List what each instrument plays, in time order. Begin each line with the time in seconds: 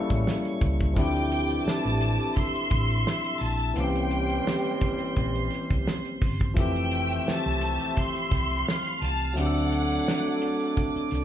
Already playing: horn section C#3 E3 A#3 E4, tine electric piano G3 A#3 C#4 E4 A4, violin section C#5 C#6
0.10 fingered electric bass A1, kick, closed hi-hat
0.27 snare
0.45 closed hi-hat
0.61 fingered electric bass C#2, kick, closed hi-hat
0.80 kick, closed hi-hat
0.93 fingered electric bass D2, horn section C3 E3 A3 E4, tine electric piano F3 C4 D4, violin section D5 D6, kick, closed hi-hat
0.98 tine electric piano E4 G4, violin section G5
1.17 closed hi-hat
1.32 closed hi-hat
1.50 closed hi-hat
1.66 violin section A5, muted fingered electric bass stroke, snare
1.85 fingered electric bass A1, closed hi-hat
2.01 closed hi-hat
2.19 closed hi-hat
2.36 violin section E5 C6 E6, kick, closed hi-hat
2.56 closed hi-hat
2.70 fingered electric bass A1, kick, closed hi-hat
2.90 closed hi-hat
3.07 snare
3.25 closed hi-hat
3.41 fingered electric bass A#1, violin section A5, closed hi-hat
3.59 closed hi-hat
3.74 fingered electric bass C2, tine electric piano E3 A#3 C4, horn section E3 G3 C#4 G4, violin section C5 G5 C6, closed hi-hat
3.78 tine electric piano C#4 G4
3.96 closed hi-hat
4.11 closed hi-hat
4.30 closed hi-hat
4.47 snare
4.66 closed hi-hat
4.81 kick, closed hi-hat
4.99 closed hi-hat
5.16 fingered electric bass A#1, kick, closed hi-hat
5.35 closed hi-hat
5.50 snare, closed hi-hat
5.70 fingered electric bass C2, kick, closed hi-hat
5.87 snare
6.05 closed hi-hat
6.22 fingered electric bass G1, kick, open hi-hat
6.40 kick, closed hi-hat
6.54 fingered electric bass F1, tine electric piano F3 A3 C4, horn section A3 C4 G4 C5, violin section E5 E6, kick, closed hi-hat
6.59 tine electric piano E3 G4, violin section G5
6.76 closed hi-hat
6.92 closed hi-hat
7.10 closed hi-hat
7.27 violin section A5, muted fingered electric bass stroke, snare
7.46 fingered electric bass C2, closed hi-hat
7.61 closed hi-hat
7.80 closed hi-hat
7.97 violin section C6, kick, closed hi-hat
8.16 closed hi-hat
8.31 fingered electric bass C2, kick, snare, closed hi-hat
8.51 closed hi-hat
8.66 violin section F5 F6, snare
8.86 closed hi-hat
9.02 fingered electric bass C2, violin section A5, closed hi-hat
9.20 closed hi-hat
9.34 fingered electric bass D2, tine electric piano F#3 A3 C4, horn section F#3 A3 D4 A4, violin section D6, closed hi-hat
9.38 tine electric piano D4 G4, violin section D5 F#5
9.46 tine electric piano A4
9.57 closed hi-hat
9.72 closed hi-hat
9.90 closed hi-hat
10.08 snare
10.27 closed hi-hat
10.42 closed hi-hat
10.60 closed hi-hat
10.77 kick, closed hi-hat
10.96 muted fingered electric bass stroke, closed hi-hat
11.11 fingered electric bass C2, snare, closed hi-hat